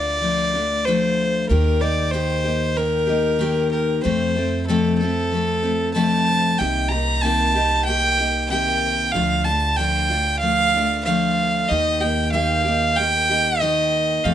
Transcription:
Already playing: upright bass D2, steel-string acoustic guitar A3 D4 F4, fiddle D5
0.21 steel-string acoustic guitar F3 A3 D4 F4
0.54 steel-string acoustic guitar A3 D4 F4
0.85 steel-string acoustic guitar D3 F3 A3 D4 F4, fiddle C5
1.49 upright bass D#2, steel-string acoustic guitar D#3 A#3 D#4 G4, fiddle A#4
1.80 steel-string acoustic guitar A#3 D#4 G4, fiddle D5
2.11 steel-string acoustic guitar D#3 A#3 D#4 G4, fiddle C5
2.44 steel-string acoustic guitar A#3 D#4 G4
2.76 steel-string acoustic guitar D#3 A#3 D#4 G4, fiddle A#4
3.07 steel-string acoustic guitar A#3 D#4 G4
3.39 steel-string acoustic guitar D#3 A#3 D#4 G4
3.71 fiddle A#4
4.03 steel-string acoustic guitar F2 C3 F3 A3 C4 A4, upright bass F2, fiddle C5
4.36 steel-string acoustic guitar F3 A3 C4 A4
4.67 steel-string acoustic guitar F2 C3 F3 A3 C4 A4, fiddle A4
4.98 steel-string acoustic guitar C4 A4, fiddle A4
5.03 steel-string acoustic guitar F3 A3
5.31 steel-string acoustic guitar F3 A3 C4 A4
5.63 steel-string acoustic guitar F3 A3 C4 A4
5.94 steel-string acoustic guitar F2 C3 F3 A3 C4 A4, fiddle A5
6.58 upright bass C2, steel-string acoustic guitar C3 D#3 A#3 D#4 G4, fiddle G5
6.88 steel-string acoustic guitar D#4 G4, fiddle A#5
6.93 steel-string acoustic guitar A#3
7.22 steel-string acoustic guitar C3 D#3 A#3 D#4 G4, fiddle A5
7.55 steel-string acoustic guitar A#3 D#4 G4
7.85 steel-string acoustic guitar D#3 A#3, fiddle G5
7.89 steel-string acoustic guitar D#4 G4
8.19 steel-string acoustic guitar A#3 D#4 G4
8.50 steel-string acoustic guitar C3 D#3 A#3 D#4 G4, fiddle G5
9.11 upright bass D2, steel-string acoustic guitar D3 F3 A3, fiddle F5
9.16 steel-string acoustic guitar D4 F4
9.44 steel-string acoustic guitar A3 D4 F4, fiddle A5
9.76 steel-string acoustic guitar D3 F3 A3 D4, fiddle G5
9.80 steel-string acoustic guitar F4
10.10 steel-string acoustic guitar A3 D4 F4
10.39 steel-string acoustic guitar F3 A3, fiddle F5
10.44 steel-string acoustic guitar D4 F4
10.74 steel-string acoustic guitar A3 D4 F4
11.05 steel-string acoustic guitar D3 F3 A3 D4 F4, fiddle F5
11.69 upright bass D#2, steel-string acoustic guitar D#3 A#3 D#4 G4, fiddle D#5
12.00 steel-string acoustic guitar A#3 D#4 G4, fiddle G5
12.32 steel-string acoustic guitar D#3 A#3 D#4 G4, fiddle F5
12.65 steel-string acoustic guitar A#3 D#4 G4
12.96 steel-string acoustic guitar D#3 A#3 D#4, fiddle G5
13.00 steel-string acoustic guitar G4
13.30 steel-string acoustic guitar A#3 D#4 G4
13.60 steel-string acoustic guitar D#3 A#3 D#4 G4, fiddle D#5
14.24 steel-string acoustic guitar F2 C3 F3 A3 C4 A4, upright bass F2, fiddle F5

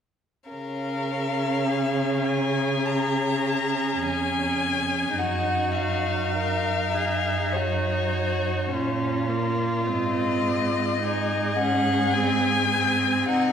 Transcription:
0.49 cello C#3, viola C#4, violin A#4 F5
1.66 violin G#4
2.24 violin G#5
2.84 viola C#4, violin A#5
4.01 cello F2, violin G#5
5.17 cello F#2, viola D#4, violin F#4 F#5
5.77 violin F5
6.36 violin A#4
6.96 violin G#4
7.52 violin F#4 C#5
8.70 cello A#2, viola C#4, violin F4
9.29 viola A#3
9.85 viola C4, violin D#5
9.89 cello G#2
11.00 viola D#4, violin G#4
11.56 viola C#4, violin F#5
12.13 viola C4, violin G#5
12.72 viola C4
13.29 cello C3, violin D#4 F#5

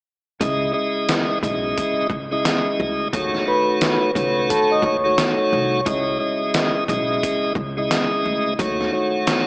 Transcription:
0.40 upright bass C#2, tonewheel organ C#3 G#3 E4 D#5, kick, closed hi-hat
0.73 tonewheel organ C#3 G#3 E4 D#5
1.09 snare, closed hi-hat
1.42 upright bass B1, tonewheel organ C#3 G#3 E4 D#5, kick, closed hi-hat
1.78 kick, closed hi-hat
2.10 upright bass C#2, kick
2.31 tonewheel organ C#3 G#3 E4 D#5
2.45 snare, closed hi-hat
2.80 upright bass D2
3.13 upright bass D#2, tonewheel organ D#3 A3 F#4 C#5, kick, closed hi-hat
3.35 snare
3.46 tonewheel organ D#3 A3 F#4 C#5, vibraphone B4 B5
3.81 snare, closed hi-hat
4.15 upright bass C#2, tonewheel organ D#3 A3 F#4 C#5, kick, closed hi-hat
4.49 vibraphone A4 A5, kick, closed hi-hat
4.71 vibraphone D#5 D#6
4.82 upright bass D#2, vibraphone C#5 C#6, kick
5.04 tonewheel organ D#3 A3 F#4 C#5
5.18 snare, closed hi-hat
5.53 upright bass C2
5.85 upright bass C#2, tonewheel organ C#3 G#3 E4 D#5, kick, closed hi-hat
6.18 tonewheel organ C#3 G#3 E4 D#5
6.54 snare, closed hi-hat
6.88 upright bass B1, tonewheel organ C#3 G#3 E4 D#5, kick, closed hi-hat
7.23 kick, closed hi-hat
7.55 upright bass C#2, kick
7.77 tonewheel organ C#3 G#3 E4 D#5
7.91 snare, closed hi-hat
8.25 upright bass D2
8.59 upright bass D#2, tonewheel organ D#3 A3 F#4 C#5, kick, closed hi-hat
8.81 snare
8.92 tonewheel organ D#3 A3 F#4 C#5
9.27 snare, closed hi-hat

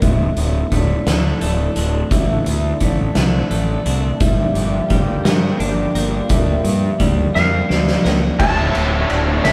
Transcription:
Already playing: clean electric guitar D4, analog synth pad D4
0.01 fingered electric bass D1, clean electric guitar D2, analog synth pad E3 A3 A4, vibraphone E5, kick, closed hi-hat
0.37 fingered electric bass D1, closed hi-hat
0.72 fingered electric bass D1, clean electric guitar A2, vibraphone D5, kick, closed hi-hat
1.07 fingered electric bass D2, clean electric guitar D3, snare, closed hi-hat
1.41 fingered electric bass D1, clean electric guitar A3, vibraphone D5, closed hi-hat
1.76 fingered electric bass D1, clean electric guitar D3, closed hi-hat
2.11 fingered electric bass A1, clean electric guitar D2, vibraphone E5, kick, closed hi-hat
2.46 fingered electric bass D2, closed hi-hat
2.81 fingered electric bass A1, clean electric guitar A2, vibraphone D5, kick, closed hi-hat
3.15 fingered electric bass C2, clean electric guitar D3, snare, closed hi-hat
3.51 fingered electric bass A1, clean electric guitar A3, vibraphone D5, closed hi-hat
3.86 fingered electric bass C2, clean electric guitar D3, closed hi-hat
4.19 fingered electric bass G1, clean electric guitar G2, analog synth pad F3 A#3 D4 G4, vibraphone E5, kick, closed hi-hat
4.54 fingered electric bass G1, closed hi-hat
4.90 fingered electric bass G1, clean electric guitar G3, vibraphone D5, kick, closed hi-hat
5.25 fingered electric bass G2, clean electric guitar A#3, snare, closed hi-hat
5.60 fingered electric bass G1, clean electric guitar D4, vibraphone D5, closed hi-hat
5.95 fingered electric bass G1, clean electric guitar A#3, closed hi-hat
6.29 fingered electric bass D2, clean electric guitar G2, vibraphone E5, kick, closed hi-hat
6.64 fingered electric bass G2, closed hi-hat
7.00 fingered electric bass D2, clean electric guitar G3, vibraphone D5, kick, closed hi-hat
7.35 fingered electric bass F2, clean electric guitar A#3, electric slide guitar F5, snare
7.69 fingered electric bass D2, clean electric guitar D4, vibraphone D5, snare
7.87 snare
8.04 fingered electric bass C#2, clean electric guitar A#3, snare
8.39 fingered electric bass D1, clean electric guitar D2, distorted electric guitar D2 A2, analog synth pad E3 A3 D4 A4, vibraphone E5, electric slide guitar A5, kick, crash
8.47 distorted electric guitar D2 A2
8.54 distorted electric guitar D2 A2
8.61 distorted electric guitar D2 A2
8.70 distorted electric guitar D2 A2, clean electric guitar A2
8.75 fingered electric bass D1, distorted electric guitar D2 A2, ride
8.85 distorted electric guitar D2 A2
8.92 distorted electric guitar D2 A2
9.01 distorted electric guitar D2 A2
9.09 fingered electric bass D1, distorted electric guitar D2 A2, clean electric guitar D3, vibraphone D5, ride
9.16 distorted electric guitar D2 A2
9.24 distorted electric guitar D2 A2
9.31 distorted electric guitar D2 A2
9.39 distorted electric guitar D2 A2
9.44 fingered electric bass A1, distorted electric guitar D2 A2, clean electric guitar A3, electric slide guitar E5, snare, ride

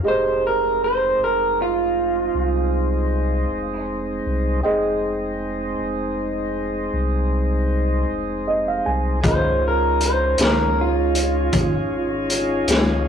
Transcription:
0.03 sub bass F1, tonewheel organ G#3 C4 D#4, upright piano G4 G#4 D#5
0.08 clean electric guitar C5
0.47 clean electric guitar A#4
0.84 clean electric guitar C5
1.19 sub bass F1
1.24 clean electric guitar A#4
1.62 clean electric guitar F4
2.34 sub bass C2
3.49 sub bass F1
4.26 sub bass C2
4.63 sub bass F1, tonewheel organ G#3 C4 D#4, upright piano G#4 D#5 G5
5.78 sub bass F1
6.93 sub bass C2
8.09 sub bass F1
8.48 upright piano D#5
8.68 upright piano F5
8.86 sub bass C2, upright piano G#5
9.21 sub bass C#2, tonewheel organ C#4 D#4 F4 G#4, upright piano F4 G#4, kick, closed hi-hat
9.26 clean electric guitar C5, upright piano D#5
9.68 clean electric guitar A#4
10.00 closed hi-hat
10.06 clean electric guitar C5
10.38 sub bass C#2, snare, closed hi-hat
10.44 clean electric guitar A#4
10.81 clean electric guitar F4
11.15 closed hi-hat
11.52 sub bass G#1, kick, closed hi-hat
12.29 closed hi-hat
12.68 sub bass C#2, snare, closed hi-hat

